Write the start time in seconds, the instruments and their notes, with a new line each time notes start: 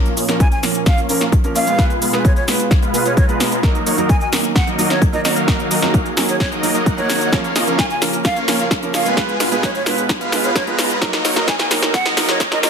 Already playing: analog synth pad A#2 F3 C#4 A#4, supersaw synth A#3 C#4 F4 C#5 F5
0.06 closed hi-hat, shaker
0.17 supersaw synth A#3 C#4 F4 C#5 D#5, open hi-hat, shaker
0.28 felt piano F3 A#3 C#4 A#4, supersaw synth A#3 C#4 F4 C#5 F5, snare, closed hi-hat, shaker
0.40 flute G#5, kick, closed hi-hat, shaker
0.52 flute G#5, closed hi-hat, shaker
0.63 felt piano F3 A#3 C#4 A#4, snare, open hi-hat, shaker
0.75 closed hi-hat, shaker
0.86 flute F5, kick, snare, closed hi-hat, shaker
0.98 supersaw synth A#3 C#4 F4 C#5 F5, closed hi-hat, shaker
1.09 felt piano F3 A#3 C#4 A#4, supersaw synth A#3 C#4 F4 C#5 F5, open hi-hat, shaker
1.21 snare, closed hi-hat, shaker
1.32 kick, closed hi-hat, shaker
1.43 felt piano F3 A#3 C#4 A#4, closed hi-hat, shaker
1.55 supersaw synth A#3 C#4 F4 C#5 D#5, flute F5, open hi-hat, shaker
1.67 supersaw synth G#3 B3 F4 B4 G#5, closed hi-hat, shaker
1.78 analog synth pad B2 G#3 F4 B4, felt piano G#3 B3 F4 B4, kick, snare, closed hi-hat, shaker
1.90 closed hi-hat, shaker
2.02 supersaw synth G#3 B3 F4 B4 F5, open hi-hat, shaker
2.13 felt piano G#3 B3 F4 B4, supersaw synth G#3 B3 F4 B4 G#5, snare, closed hi-hat, shaker
2.25 flute C#5, kick, closed hi-hat, shaker
2.36 flute C#5, closed hi-hat, shaker
2.47 felt piano G#3 B3 F4 B4, snare, open hi-hat, shaker
2.60 closed hi-hat, shaker
2.71 kick, snare, closed hi-hat, shaker
2.82 supersaw synth G#3 B3 F4 B4 F5, closed hi-hat, shaker
2.93 felt piano G#3 B3 F4 B4, open hi-hat, shaker
3.05 supersaw synth G#3 B3 F4 B4 F5, flute C#5, closed hi-hat, shaker
3.17 supersaw synth G#3 B3 F4 B4 A#5, flute C#5, kick, closed hi-hat, shaker
3.28 felt piano G#3 B3 F4 B4, closed hi-hat, shaker
3.40 snare, open hi-hat, shaker
3.52 closed hi-hat, shaker
3.63 analog synth pad D#3 A#3 F#4 A#4, felt piano F#3 A#3 D#4 A#4, supersaw synth F#3 A#3 D#4 A#4 D#5, kick, snare, closed hi-hat, shaker
3.75 closed hi-hat, shaker
3.86 supersaw synth F#3 A#3 D#4 A#4 C#5, open hi-hat, shaker
3.97 felt piano F#3 A#3 D#4 A#4, supersaw synth F#3 A#3 D#4 A#4 D#5, closed hi-hat, shaker
4.09 flute G#5, kick, closed hi-hat, shaker
4.21 flute G#5, closed hi-hat, shaker
4.32 felt piano F#3 A#3 D#4 A#4, snare, open hi-hat, shaker
4.44 closed hi-hat, shaker
4.55 flute F#5, kick, snare, closed hi-hat, shaker
4.67 supersaw synth F#3 A#3 D#4 A#4 D#5, closed hi-hat, shaker
4.78 felt piano F#3 A#3 D#4 A#4, supersaw synth F#3 A#3 D#4 A#4 D#5, open hi-hat, shaker
4.90 flute C#5, snare, closed hi-hat, shaker
5.02 kick, closed hi-hat, shaker
5.13 felt piano F#3 A#3 D#4 A#4, flute D#5, closed hi-hat, shaker
5.25 supersaw synth F#3 A#3 D#4 A#4 C#5, flute D#5, snare, open hi-hat, shaker
5.36 supersaw synth F#3 A#3 D#4 A#4 F5, closed hi-hat, shaker
5.47 felt piano F#3 A#3 D#4 A#4, analog synth pad G#4, kick, snare, closed hi-hat, shaker
5.60 closed hi-hat, shaker
5.71 supersaw synth F#3 A#3 D#4 A#4 D#5, open hi-hat, shaker
5.82 felt piano F#3 A#3 D#4 A#4, supersaw synth F#3 A#3 D#4 A#4 F5, snare, closed hi-hat, shaker
5.94 kick, closed hi-hat, shaker
6.06 closed hi-hat, shaker
6.16 felt piano F#3 A#3 D#4 A#4, snare, open hi-hat, shaker
6.28 flute C#5, closed hi-hat, shaker
6.40 flute C#5, kick, snare, closed hi-hat, shaker
6.52 supersaw synth F#3 A#3 D#4 A#4 D#5, closed hi-hat, shaker
6.63 felt piano F#3 A#3 D#4 A#4, open hi-hat, shaker
6.75 supersaw synth F#3 A#3 D#4 A#4 D#5, closed hi-hat, shaker
6.86 supersaw synth F#3 A#3 D#4 A#4 F#5, kick, closed hi-hat, shaker
6.97 felt piano F#3 A#3 D#4 A#4, flute C#5, closed hi-hat, shaker
7.10 snare, open hi-hat, shaker
7.21 closed hi-hat, shaker
7.32 analog synth pad C#3 A#3 F4 A#4, felt piano F3 A#3 C#4 A#4, supersaw synth A#3 C#4 F4 C#5 F5, kick, snare, closed hi-hat, riser, shaker
7.44 closed hi-hat, shaker
7.56 supersaw synth A#3 C#4 F4 C#5 D#5, snare, open hi-hat, shaker
7.66 felt piano F3 A#3 C#4 A#4, supersaw synth A#3 C#4 F4 C#5 F5, closed hi-hat, shaker
7.79 flute G#5, kick, snare, closed hi-hat, shaker
7.90 flute G#5, closed hi-hat, shaker
8.01 felt piano F3 A#3 C#4 A#4, snare, open hi-hat, shaker
8.13 closed hi-hat, shaker
8.25 flute F5, kick, snare, closed hi-hat, shaker
8.36 supersaw synth A#3 C#4 F4 C#5 F5, closed hi-hat, shaker
8.47 felt piano F3 A#3 C#4 A#4, supersaw synth A#3 C#4 F4 C#5 F5, snare, open hi-hat, shaker
8.59 closed hi-hat, shaker
8.71 kick, snare, closed hi-hat, shaker
8.82 felt piano F3 A#3 C#4 A#4, closed hi-hat, shaker
8.94 supersaw synth A#3 C#4 F4 C#5 D#5, flute F5, snare, open hi-hat, shaker
9.05 supersaw synth G#3 B3 F4 B4 G#5, closed hi-hat, shaker
9.16 analog synth pad B2 G#3 B4, felt piano G#3 B3 F4 B4, kick, snare, closed hi-hat, shaker
9.29 closed hi-hat, shaker
9.40 supersaw synth G#3 B3 F4 B4 F5, snare, open hi-hat, shaker
9.51 felt piano G#3 B3 F4 B4, supersaw synth G#3 B3 F4 B4 G#5, closed hi-hat, shaker
9.63 flute C#5, kick, snare, closed hi-hat, shaker
9.75 flute C#5, closed hi-hat, shaker
9.86 felt piano G#3 B3 F4 B4, snare, open hi-hat, shaker
9.98 closed hi-hat, shaker
10.09 kick, snare, closed hi-hat, shaker
10.21 supersaw synth G#3 B3 F4 B4 F5, closed hi-hat, shaker
10.32 felt piano G#3 B3 F4 B4, snare, open hi-hat, shaker
10.44 supersaw synth G#3 B3 F4 B4 F5, flute C#5, closed hi-hat, shaker
10.55 supersaw synth G#3 B3 F4 B4 A#5, flute C#5, kick, snare, closed hi-hat, shaker
10.66 felt piano G#3 B3 F4 B4, closed hi-hat, shaker
10.79 snare, open hi-hat, shaker
10.90 closed hi-hat, shaker
11.01 analog synth pad A#2 F#3 D#4 A#4, felt piano F#3 A#3 D#4 A#4, supersaw synth F#3 A#3 D#4 A#4 D#5, kick, snare, closed hi-hat, shaker
11.13 snare, closed hi-hat, shaker
11.25 supersaw synth F#3 A#3 D#4 A#4 C#5, snare, open hi-hat, shaker
11.36 felt piano F#3 A#3 D#4 A#4, supersaw synth F#3 A#3 D#4 A#4 D#5, snare, closed hi-hat, shaker
11.48 flute G#5, kick, snare, closed hi-hat, shaker
11.59 flute G#5, snare, closed hi-hat, shaker
11.70 felt piano F#3 A#3 D#4 A#4, snare, open hi-hat, shaker
11.82 snare, closed hi-hat, shaker
11.94 flute F#5, kick, snare, closed hi-hat, shaker
12.05 supersaw synth F#3 A#3 D#4 A#4 D#5, snare, closed hi-hat, shaker
12.16 felt piano F#3 A#3 D#4 A#4, supersaw synth F#3 A#3 D#4 A#4 D#5, snare, open hi-hat, shaker
12.29 flute C#5, snare, closed hi-hat, shaker
12.40 kick, snare, closed hi-hat, shaker
12.51 felt piano F#3 A#3 D#4 A#4, flute D#5, snare, closed hi-hat, shaker
12.63 supersaw synth F#3 A#3 D#4 A#4 C#5, flute D#5, snare, open hi-hat, shaker